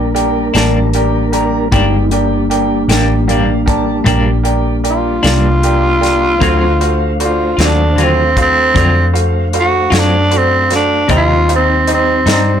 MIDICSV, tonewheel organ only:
0, 0, Header, 1, 2, 480
1, 0, Start_track
1, 0, Key_signature, -2, "minor"
1, 0, Tempo, 781250
1, 1059, Time_signature, 12, 3, 24, 8
1, 7741, End_track
2, 0, Start_track
2, 0, Title_t, "Tonewheel organ"
2, 0, Program_c, 0, 16
2, 0, Note_on_c, 0, 55, 64
2, 0, Note_on_c, 0, 58, 62
2, 0, Note_on_c, 0, 62, 64
2, 0, Note_on_c, 0, 70, 63
2, 1031, Note_off_c, 0, 62, 0
2, 1033, Note_off_c, 0, 70, 0
2, 1034, Note_off_c, 0, 55, 0
2, 1034, Note_off_c, 0, 58, 0
2, 1046, Note_on_c, 0, 56, 52
2, 1051, Note_on_c, 0, 63, 52
2, 1052, Note_on_c, 0, 59, 56
2, 1289, Note_on_c, 0, 55, 64
2, 1290, Note_on_c, 0, 62, 64
2, 1291, Note_on_c, 0, 58, 68
2, 1292, Note_off_c, 0, 56, 0
2, 1295, Note_off_c, 0, 59, 0
2, 1295, Note_off_c, 0, 63, 0
2, 3906, Note_off_c, 0, 55, 0
2, 3907, Note_off_c, 0, 62, 0
2, 3909, Note_off_c, 0, 58, 0
2, 3923, Note_on_c, 0, 72, 58
2, 3925, Note_on_c, 0, 62, 61
2, 3925, Note_on_c, 0, 77, 56
2, 3926, Note_on_c, 0, 57, 57
2, 6786, Note_off_c, 0, 72, 0
2, 6787, Note_off_c, 0, 62, 0
2, 6787, Note_off_c, 0, 77, 0
2, 6788, Note_off_c, 0, 57, 0
2, 6808, Note_on_c, 0, 55, 62
2, 6808, Note_on_c, 0, 72, 60
2, 6812, Note_on_c, 0, 60, 63
2, 6813, Note_on_c, 0, 63, 59
2, 7741, Note_off_c, 0, 55, 0
2, 7741, Note_off_c, 0, 60, 0
2, 7741, Note_off_c, 0, 63, 0
2, 7741, Note_off_c, 0, 72, 0
2, 7741, End_track
0, 0, End_of_file